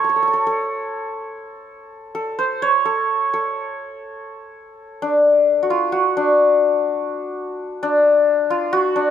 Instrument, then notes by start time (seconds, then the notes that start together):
santur
Already playing: C#5
0.04 A4
0.09 A4
0.16 A4
0.23 A4
0.28 A4
0.33 A4
0.47 A4
2.15 A4
2.39 C5
2.62 C#5
2.85 A4
3.34 A4
5.02 D4
5.63 F#4
5.70 F4
5.92 F#4
6.17 D4
7.83 D4
8.50 F4
8.73 F#4
8.96 D4